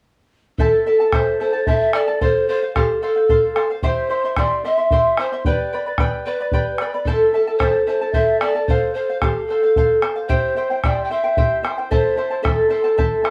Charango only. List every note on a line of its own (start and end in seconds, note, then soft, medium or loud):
0.59 0.86 E4 medium
0.59 0.86 A4 medium
0.59 0.86 C5 medium
0.59 0.85 E5 medium
0.59 0.87 A5 medium
0.86 1.00 E4 medium
0.86 1.00 A4 medium
0.86 1.00 E5 medium
0.86 0.99 A5 medium
1.00 1.13 E4 soft
1.00 1.14 A4 soft
1.00 1.13 A5 medium
1.14 1.40 E4 medium
1.14 1.40 A4 medium
1.14 1.40 C5 medium
1.14 1.39 E5 medium
1.14 1.40 A5 medium
1.40 1.54 E4 medium
1.40 1.53 A4 medium
1.40 1.53 E5 soft
1.40 1.52 A5 medium
1.53 1.67 E4 soft
1.53 1.67 A4 soft
1.53 1.67 A5 soft
1.67 1.94 E4 medium
1.67 1.94 A4 medium
1.67 1.94 C5 medium
1.67 1.93 E5 medium
1.67 1.94 A5 medium
1.95 2.08 E4 medium
1.95 2.08 A4 medium
1.95 2.08 E5 medium
1.95 2.06 A5 medium
2.07 2.22 E4 soft
2.07 2.20 A4 soft
2.07 2.21 A5 soft
2.21 2.48 A4 medium
2.21 2.48 C5 medium
2.21 2.48 F5 medium
2.49 2.62 A4 medium
2.49 2.62 C5 medium
2.49 2.61 F5 medium
2.62 2.75 C5 soft
2.62 2.75 F5 soft
2.75 3.01 A4 medium
2.75 3.02 C5 medium
2.75 3.02 F5 medium
3.02 3.16 A4 medium
3.02 3.15 C5 medium
3.02 3.15 F5 medium
3.16 3.29 C5 soft
3.16 3.29 F5 soft
3.29 3.54 A4 medium
3.29 3.55 C5 medium
3.29 3.55 F5 medium
3.55 3.69 A4 medium
3.55 3.70 C5 medium
3.55 3.69 F5 medium
3.70 3.82 C5 soft
3.70 3.83 F5 soft
3.83 4.09 E4 medium
3.83 4.10 G4 medium
3.83 4.08 C5 medium
3.83 4.09 E5 medium
3.83 4.09 C6 medium
4.09 4.24 E4 medium
4.09 4.23 C5 medium
4.09 4.24 E5 medium
4.09 4.23 C6 medium
4.25 4.37 E4 soft
4.25 4.37 E5 soft
4.25 4.37 C6 soft
4.38 4.64 E4 medium
4.38 4.65 G4 medium
4.38 4.63 C5 medium
4.38 4.64 E5 medium
4.38 4.65 C6 medium
4.65 4.78 E4 soft
4.65 4.78 C5 medium
4.65 4.77 E5 medium
4.65 4.76 C6 medium
4.78 4.91 E4 soft
4.78 4.92 E5 soft
4.78 4.91 C6 soft
4.92 5.18 E4 medium
4.92 5.18 G4 medium
4.92 5.17 C5 medium
4.92 5.18 E5 medium
4.92 5.18 C6 medium
5.18 5.32 E4 medium
5.18 5.32 C5 medium
5.18 5.32 E5 medium
5.18 5.31 C6 medium
5.32 5.46 E4 soft
5.32 5.46 E5 soft
5.32 5.46 C6 soft
5.46 5.72 G4 medium
5.46 5.72 B4 medium
5.46 5.73 D5 medium
5.46 5.71 G5 medium
5.46 5.73 B5 medium
5.73 5.86 B4 medium
5.73 5.86 D5 medium
5.73 5.86 G5 medium
5.73 5.85 B5 medium
5.86 5.98 B4 soft
5.86 5.99 D5 soft
5.86 5.99 B5 soft
5.99 6.26 G4 medium
5.99 6.25 B4 medium
5.99 6.26 D5 medium
5.99 6.24 G5 medium
5.99 6.27 B5 medium
6.26 6.40 B4 medium
6.26 6.40 D5 medium
6.26 6.39 G5 medium
6.26 6.39 B5 medium
6.40 6.53 B4 soft
6.40 6.53 D5 soft
6.40 6.53 B5 soft
6.53 6.80 G4 medium
6.53 6.80 B4 medium
6.53 6.80 D5 medium
6.53 6.79 G5 medium
6.53 6.81 B5 medium
6.81 6.94 B4 medium
6.81 6.93 D5 medium
6.81 6.94 G5 medium
6.81 6.93 B5 medium
6.94 7.08 B4 soft
6.94 7.07 D5 soft
6.94 7.07 B5 soft
7.07 7.33 E4 medium
7.07 7.34 A4 medium
7.07 7.34 C5 medium
7.07 7.33 E5 medium
7.07 7.34 A5 medium
7.34 7.47 E4 medium
7.34 7.47 A4 medium
7.34 7.47 E5 medium
7.34 7.46 A5 medium
7.47 7.60 E4 soft
7.47 7.60 A4 soft
7.47 7.61 A5 soft
7.61 7.87 E4 medium
7.61 7.88 A4 medium
7.61 7.88 C5 medium
7.61 7.86 E5 medium
7.61 7.88 A5 medium
7.87 8.02 E4 medium
7.87 8.01 A4 medium
7.87 8.01 E5 medium
7.87 8.00 A5 medium
8.01 8.13 E4 soft
8.01 8.14 A4 soft
8.01 8.14 A5 soft
8.14 8.41 E4 medium
8.14 8.42 A4 medium
8.14 8.41 C5 medium
8.14 8.41 E5 medium
8.14 8.42 A5 medium
8.42 8.55 E4 medium
8.42 8.54 A4 medium
8.42 8.55 E5 medium
8.42 8.54 A5 medium
8.55 8.69 E4 soft
8.55 8.68 A4 soft
8.55 8.68 A5 soft
8.70 8.94 A4 medium
8.70 8.95 C5 medium
8.70 8.96 F5 medium
8.95 9.09 A4 medium
8.95 9.09 C5 medium
8.95 9.08 F5 medium
9.10 9.21 C5 soft
9.10 9.22 F5 soft
9.22 9.49 A4 medium
9.22 9.49 C5 medium
9.22 9.50 F5 medium
9.50 9.63 A4 medium
9.50 9.63 C5 medium
9.50 9.62 F5 medium
9.63 9.76 C5 soft
9.63 9.76 F5 medium
9.77 10.01 A4 medium
9.77 10.02 C5 medium
9.77 10.02 F5 medium
10.02 10.16 A4 medium
10.02 10.17 C5 medium
10.02 10.14 F5 medium
10.16 10.28 C5 soft
10.16 10.29 F5 soft
10.29 10.55 E4 medium
10.29 10.56 G4 medium
10.29 10.56 C5 medium
10.29 10.55 E5 medium
10.29 10.56 G5 medium
10.56 10.70 E4 medium
10.56 10.69 C5 medium
10.56 10.70 E5 medium
10.56 10.69 G5 medium
10.70 10.84 E4 soft
10.70 10.84 C5 soft
10.70 10.84 G5 soft
10.84 11.10 E4 medium
10.84 11.11 G4 medium
10.84 11.10 C5 medium
10.84 11.09 E5 medium
10.84 11.11 G5 medium
11.11 11.24 E4 medium
11.11 11.23 C5 medium
11.11 11.24 E5 medium
11.11 11.23 G5 medium
11.24 11.37 E4 soft
11.24 11.36 C5 soft
11.24 11.37 G5 soft
11.38 11.62 E4 medium
11.38 11.64 G4 medium
11.38 11.63 C5 medium
11.38 11.62 E5 medium
11.38 11.64 G5 medium
11.63 11.77 E4 medium
11.63 11.78 C5 medium
11.63 11.77 E5 soft
11.63 11.76 G5 medium
11.78 11.90 E4 soft
11.78 11.90 C5 soft
11.78 11.90 G5 soft
11.91 12.16 E4 medium
11.91 12.17 A4 medium
11.91 12.17 C5 medium
11.91 12.16 E5 medium
11.91 12.17 A5 medium
12.17 12.30 E4 medium
12.17 12.30 C5 medium
12.17 12.31 E5 medium
12.17 12.29 A5 medium
12.31 12.42 E4 soft
12.31 12.43 C5 soft
12.31 12.43 A5 soft
12.43 12.69 E4 medium
12.43 12.69 A4 medium
12.43 12.69 C5 medium
12.43 12.68 E5 medium
12.43 12.69 A5 medium
12.69 12.84 E4 medium
12.69 12.83 C5 medium
12.69 12.84 E5 medium
12.69 12.83 A5 medium
12.84 12.97 E4 soft
12.84 12.97 C5 soft
12.84 12.97 A5 soft
12.97 13.23 E4 medium
12.97 13.23 A4 medium
12.97 13.24 C5 medium
12.97 13.23 E5 medium
12.97 13.24 A5 medium
13.24 13.30 E4 medium
13.24 13.30 C5 medium
13.24 13.30 E5 medium
13.24 13.30 A5 medium